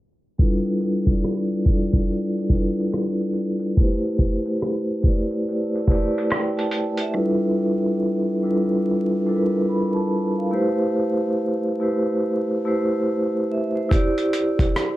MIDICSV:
0, 0, Header, 1, 3, 480
1, 0, Start_track
1, 0, Tempo, 845070
1, 222, Time_signature, 4, 2, 24, 8
1, 8502, End_track
2, 0, Start_track
2, 0, Title_t, "Vibraphone"
2, 0, Program_c, 0, 11
2, 218, Note_on_c, 0, 55, 103
2, 220, Note_on_c, 0, 62, 83
2, 224, Note_on_c, 0, 64, 84
2, 227, Note_on_c, 0, 65, 82
2, 229, Note_on_c, 0, 69, 85
2, 233, Note_on_c, 0, 71, 108
2, 327, Control_c, 0, 64, 127
2, 474, Note_off_c, 0, 55, 0
2, 476, Note_off_c, 0, 62, 0
2, 478, Note_off_c, 0, 64, 0
2, 479, Note_off_c, 0, 65, 0
2, 480, Note_off_c, 0, 69, 0
2, 482, Note_off_c, 0, 71, 0
2, 605, Note_on_c, 0, 55, 70
2, 609, Note_on_c, 0, 62, 59
2, 612, Note_on_c, 0, 64, 63
2, 615, Note_on_c, 0, 65, 59
2, 618, Note_on_c, 0, 69, 64
2, 623, Note_on_c, 0, 74, 74
2, 855, Note_off_c, 0, 55, 0
2, 857, Note_off_c, 0, 62, 0
2, 859, Note_off_c, 0, 64, 0
2, 860, Note_off_c, 0, 65, 0
2, 862, Note_off_c, 0, 69, 0
2, 864, Note_off_c, 0, 74, 0
2, 952, Note_on_c, 0, 55, 74
2, 956, Note_on_c, 0, 62, 63
2, 960, Note_on_c, 0, 64, 63
2, 963, Note_on_c, 0, 65, 68
2, 964, Note_on_c, 0, 69, 72
2, 968, Note_on_c, 0, 74, 84
2, 1302, Note_off_c, 0, 55, 0
2, 1304, Note_off_c, 0, 62, 0
2, 1306, Note_off_c, 0, 64, 0
2, 1308, Note_off_c, 0, 65, 0
2, 1309, Note_off_c, 0, 69, 0
2, 1311, Note_off_c, 0, 74, 0
2, 1423, Note_on_c, 0, 55, 75
2, 1424, Note_on_c, 0, 62, 74
2, 1426, Note_on_c, 0, 64, 71
2, 1431, Note_on_c, 0, 65, 64
2, 1435, Note_on_c, 0, 69, 75
2, 1438, Note_on_c, 0, 71, 86
2, 1931, Note_off_c, 0, 55, 0
2, 1932, Note_off_c, 0, 62, 0
2, 1933, Note_off_c, 0, 64, 0
2, 1936, Note_off_c, 0, 65, 0
2, 1937, Note_off_c, 0, 69, 0
2, 1939, Note_off_c, 0, 71, 0
2, 2144, Note_on_c, 0, 57, 99
2, 2149, Note_on_c, 0, 64, 96
2, 2151, Control_c, 0, 64, 0
2, 2154, Note_on_c, 0, 67, 85
2, 2158, Note_on_c, 0, 71, 95
2, 2162, Note_on_c, 0, 72, 105
2, 2261, Control_c, 0, 64, 127
2, 2398, Note_off_c, 0, 57, 0
2, 2400, Note_off_c, 0, 64, 0
2, 2402, Note_off_c, 0, 67, 0
2, 2405, Note_off_c, 0, 71, 0
2, 2406, Note_off_c, 0, 72, 0
2, 2525, Note_on_c, 0, 57, 69
2, 2526, Note_on_c, 0, 64, 57
2, 2532, Note_on_c, 0, 67, 62
2, 2536, Note_on_c, 0, 71, 64
2, 2540, Note_on_c, 0, 72, 73
2, 2775, Note_off_c, 0, 57, 0
2, 2776, Note_off_c, 0, 64, 0
2, 2779, Note_off_c, 0, 67, 0
2, 2781, Note_off_c, 0, 71, 0
2, 2783, Note_off_c, 0, 72, 0
2, 2859, Note_on_c, 0, 57, 74
2, 2864, Note_on_c, 0, 64, 68
2, 2867, Note_on_c, 0, 67, 67
2, 2873, Note_on_c, 0, 71, 71
2, 2876, Note_on_c, 0, 74, 80
2, 3216, Note_off_c, 0, 57, 0
2, 3219, Note_off_c, 0, 64, 0
2, 3220, Note_off_c, 0, 67, 0
2, 3223, Note_off_c, 0, 71, 0
2, 3224, Note_off_c, 0, 74, 0
2, 3341, Note_on_c, 0, 57, 77
2, 3343, Note_on_c, 0, 64, 73
2, 3347, Note_on_c, 0, 67, 64
2, 3353, Note_on_c, 0, 71, 66
2, 3356, Note_on_c, 0, 74, 89
2, 3590, Note_on_c, 0, 79, 59
2, 3723, Note_off_c, 0, 79, 0
2, 3734, Note_on_c, 0, 81, 66
2, 3850, Note_off_c, 0, 57, 0
2, 3852, Note_off_c, 0, 64, 0
2, 3854, Note_off_c, 0, 67, 0
2, 3856, Note_off_c, 0, 71, 0
2, 3858, Note_off_c, 0, 74, 0
2, 3958, Note_off_c, 0, 81, 0
2, 3975, Note_on_c, 0, 76, 60
2, 4054, Note_on_c, 0, 55, 97
2, 4057, Note_on_c, 0, 62, 81
2, 4061, Note_on_c, 0, 64, 93
2, 4063, Note_on_c, 0, 65, 85
2, 4067, Note_on_c, 0, 69, 90
2, 4068, Note_on_c, 0, 71, 111
2, 4069, Control_c, 0, 64, 0
2, 4163, Control_c, 0, 64, 127
2, 4199, Note_off_c, 0, 76, 0
2, 4567, Note_off_c, 0, 55, 0
2, 4568, Note_off_c, 0, 62, 0
2, 4570, Note_off_c, 0, 64, 0
2, 4571, Note_off_c, 0, 65, 0
2, 4573, Note_off_c, 0, 69, 0
2, 4574, Note_off_c, 0, 71, 0
2, 4787, Note_on_c, 0, 55, 78
2, 4789, Note_on_c, 0, 62, 69
2, 4794, Note_on_c, 0, 64, 69
2, 4795, Note_on_c, 0, 65, 68
2, 4801, Note_on_c, 0, 69, 70
2, 4804, Note_on_c, 0, 71, 77
2, 5140, Note_off_c, 0, 55, 0
2, 5141, Note_off_c, 0, 62, 0
2, 5144, Note_off_c, 0, 64, 0
2, 5144, Note_off_c, 0, 65, 0
2, 5147, Note_off_c, 0, 69, 0
2, 5148, Note_off_c, 0, 71, 0
2, 5262, Note_on_c, 0, 55, 78
2, 5266, Note_on_c, 0, 62, 65
2, 5269, Note_on_c, 0, 64, 66
2, 5271, Note_on_c, 0, 65, 66
2, 5274, Note_on_c, 0, 69, 73
2, 5278, Note_on_c, 0, 70, 66
2, 5314, Note_on_c, 0, 71, 85
2, 5315, Note_off_c, 0, 70, 0
2, 5503, Note_on_c, 0, 83, 58
2, 5618, Note_off_c, 0, 55, 0
2, 5620, Note_off_c, 0, 62, 0
2, 5621, Note_off_c, 0, 64, 0
2, 5622, Note_off_c, 0, 65, 0
2, 5623, Note_off_c, 0, 69, 0
2, 5640, Note_off_c, 0, 83, 0
2, 5643, Note_off_c, 0, 71, 0
2, 5646, Note_on_c, 0, 81, 65
2, 5874, Note_off_c, 0, 81, 0
2, 5894, Note_on_c, 0, 77, 61
2, 5970, Note_on_c, 0, 57, 101
2, 5973, Note_on_c, 0, 64, 88
2, 5980, Note_on_c, 0, 67, 91
2, 5983, Note_on_c, 0, 71, 84
2, 5987, Note_on_c, 0, 72, 107
2, 5990, Control_c, 0, 64, 0
2, 6078, Control_c, 0, 64, 127
2, 6119, Note_off_c, 0, 77, 0
2, 6485, Note_off_c, 0, 57, 0
2, 6487, Note_off_c, 0, 64, 0
2, 6490, Note_off_c, 0, 67, 0
2, 6492, Note_off_c, 0, 71, 0
2, 6493, Note_off_c, 0, 72, 0
2, 6703, Note_on_c, 0, 57, 76
2, 6708, Note_on_c, 0, 64, 62
2, 6711, Note_on_c, 0, 67, 69
2, 6715, Note_on_c, 0, 71, 71
2, 6719, Note_on_c, 0, 72, 81
2, 7058, Note_off_c, 0, 57, 0
2, 7060, Note_off_c, 0, 64, 0
2, 7062, Note_off_c, 0, 67, 0
2, 7064, Note_off_c, 0, 71, 0
2, 7066, Note_off_c, 0, 72, 0
2, 7184, Note_on_c, 0, 57, 74
2, 7188, Note_on_c, 0, 64, 71
2, 7193, Note_on_c, 0, 67, 66
2, 7195, Note_on_c, 0, 71, 67
2, 7200, Note_on_c, 0, 72, 94
2, 7429, Note_off_c, 0, 71, 0
2, 7431, Note_off_c, 0, 72, 0
2, 7438, Note_on_c, 0, 72, 59
2, 7659, Note_off_c, 0, 72, 0
2, 7677, Note_on_c, 0, 76, 63
2, 7692, Note_off_c, 0, 57, 0
2, 7694, Note_off_c, 0, 64, 0
2, 7697, Note_off_c, 0, 67, 0
2, 7807, Note_off_c, 0, 76, 0
2, 7814, Note_on_c, 0, 72, 61
2, 7891, Note_on_c, 0, 64, 102
2, 7899, Note_on_c, 0, 67, 96
2, 7910, Control_c, 0, 64, 0
2, 7910, Note_on_c, 0, 74, 105
2, 7996, Control_c, 0, 64, 127
2, 8039, Note_off_c, 0, 72, 0
2, 8405, Note_off_c, 0, 64, 0
2, 8410, Note_off_c, 0, 67, 0
2, 8415, Note_off_c, 0, 74, 0
2, 8502, End_track
3, 0, Start_track
3, 0, Title_t, "Drums"
3, 223, Note_on_c, 9, 36, 107
3, 229, Note_on_c, 9, 42, 67
3, 279, Note_off_c, 9, 36, 0
3, 286, Note_off_c, 9, 42, 0
3, 371, Note_on_c, 9, 42, 28
3, 428, Note_off_c, 9, 42, 0
3, 458, Note_on_c, 9, 42, 60
3, 515, Note_off_c, 9, 42, 0
3, 607, Note_on_c, 9, 36, 83
3, 610, Note_on_c, 9, 42, 43
3, 664, Note_off_c, 9, 36, 0
3, 667, Note_off_c, 9, 42, 0
3, 707, Note_on_c, 9, 37, 96
3, 708, Note_on_c, 9, 42, 67
3, 764, Note_off_c, 9, 37, 0
3, 764, Note_off_c, 9, 42, 0
3, 938, Note_on_c, 9, 42, 50
3, 942, Note_on_c, 9, 36, 91
3, 995, Note_off_c, 9, 42, 0
3, 999, Note_off_c, 9, 36, 0
3, 1093, Note_on_c, 9, 42, 46
3, 1098, Note_on_c, 9, 36, 84
3, 1150, Note_off_c, 9, 42, 0
3, 1154, Note_off_c, 9, 36, 0
3, 1198, Note_on_c, 9, 42, 62
3, 1255, Note_off_c, 9, 42, 0
3, 1355, Note_on_c, 9, 42, 31
3, 1412, Note_off_c, 9, 42, 0
3, 1419, Note_on_c, 9, 36, 76
3, 1440, Note_on_c, 9, 42, 67
3, 1475, Note_off_c, 9, 36, 0
3, 1497, Note_off_c, 9, 42, 0
3, 1591, Note_on_c, 9, 42, 41
3, 1648, Note_off_c, 9, 42, 0
3, 1661, Note_on_c, 9, 42, 74
3, 1668, Note_on_c, 9, 37, 108
3, 1717, Note_off_c, 9, 42, 0
3, 1725, Note_off_c, 9, 37, 0
3, 1821, Note_on_c, 9, 42, 31
3, 1878, Note_off_c, 9, 42, 0
3, 1894, Note_on_c, 9, 42, 64
3, 1950, Note_off_c, 9, 42, 0
3, 2043, Note_on_c, 9, 42, 48
3, 2099, Note_off_c, 9, 42, 0
3, 2142, Note_on_c, 9, 36, 108
3, 2148, Note_on_c, 9, 42, 74
3, 2199, Note_off_c, 9, 36, 0
3, 2204, Note_off_c, 9, 42, 0
3, 2293, Note_on_c, 9, 42, 29
3, 2350, Note_off_c, 9, 42, 0
3, 2379, Note_on_c, 9, 36, 75
3, 2380, Note_on_c, 9, 42, 60
3, 2436, Note_off_c, 9, 36, 0
3, 2437, Note_off_c, 9, 42, 0
3, 2532, Note_on_c, 9, 42, 46
3, 2588, Note_off_c, 9, 42, 0
3, 2626, Note_on_c, 9, 37, 105
3, 2627, Note_on_c, 9, 42, 71
3, 2683, Note_off_c, 9, 37, 0
3, 2684, Note_off_c, 9, 42, 0
3, 2856, Note_on_c, 9, 42, 54
3, 2861, Note_on_c, 9, 36, 90
3, 2913, Note_off_c, 9, 42, 0
3, 2918, Note_off_c, 9, 36, 0
3, 3016, Note_on_c, 9, 42, 46
3, 3073, Note_off_c, 9, 42, 0
3, 3116, Note_on_c, 9, 42, 70
3, 3173, Note_off_c, 9, 42, 0
3, 3269, Note_on_c, 9, 42, 31
3, 3326, Note_off_c, 9, 42, 0
3, 3338, Note_on_c, 9, 36, 78
3, 3359, Note_on_c, 9, 42, 67
3, 3395, Note_off_c, 9, 36, 0
3, 3416, Note_off_c, 9, 42, 0
3, 3511, Note_on_c, 9, 42, 42
3, 3568, Note_off_c, 9, 42, 0
3, 3581, Note_on_c, 9, 42, 74
3, 3588, Note_on_c, 9, 37, 100
3, 3638, Note_off_c, 9, 42, 0
3, 3645, Note_off_c, 9, 37, 0
3, 3742, Note_on_c, 9, 42, 31
3, 3798, Note_off_c, 9, 42, 0
3, 3813, Note_on_c, 9, 42, 63
3, 3870, Note_off_c, 9, 42, 0
3, 3961, Note_on_c, 9, 42, 47
3, 4018, Note_off_c, 9, 42, 0
3, 7903, Note_on_c, 9, 36, 109
3, 7908, Note_on_c, 9, 42, 77
3, 7960, Note_off_c, 9, 36, 0
3, 7965, Note_off_c, 9, 42, 0
3, 8053, Note_on_c, 9, 42, 29
3, 8110, Note_off_c, 9, 42, 0
3, 8140, Note_on_c, 9, 42, 58
3, 8197, Note_off_c, 9, 42, 0
3, 8288, Note_on_c, 9, 36, 84
3, 8293, Note_on_c, 9, 42, 45
3, 8345, Note_off_c, 9, 36, 0
3, 8349, Note_off_c, 9, 42, 0
3, 8385, Note_on_c, 9, 37, 98
3, 8385, Note_on_c, 9, 42, 69
3, 8442, Note_off_c, 9, 37, 0
3, 8442, Note_off_c, 9, 42, 0
3, 8502, End_track
0, 0, End_of_file